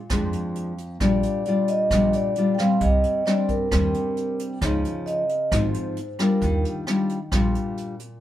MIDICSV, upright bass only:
0, 0, Header, 1, 2, 480
1, 0, Start_track
1, 0, Key_signature, -3, "major"
1, 0, Tempo, 450789
1, 1078, Time_signature, 4, 2, 24, 8
1, 8733, End_track
2, 0, Start_track
2, 0, Title_t, "Upright bass"
2, 0, Program_c, 0, 32
2, 113, Note_on_c, 0, 41, 87
2, 338, Note_off_c, 0, 41, 0
2, 1074, Note_on_c, 0, 34, 90
2, 1299, Note_off_c, 0, 34, 0
2, 2029, Note_on_c, 0, 34, 91
2, 2257, Note_off_c, 0, 34, 0
2, 2995, Note_on_c, 0, 36, 97
2, 3220, Note_off_c, 0, 36, 0
2, 3960, Note_on_c, 0, 39, 90
2, 4182, Note_off_c, 0, 39, 0
2, 4916, Note_on_c, 0, 37, 91
2, 5140, Note_off_c, 0, 37, 0
2, 5875, Note_on_c, 0, 32, 92
2, 6100, Note_off_c, 0, 32, 0
2, 6831, Note_on_c, 0, 39, 90
2, 7057, Note_off_c, 0, 39, 0
2, 7793, Note_on_c, 0, 34, 84
2, 8019, Note_off_c, 0, 34, 0
2, 8733, End_track
0, 0, End_of_file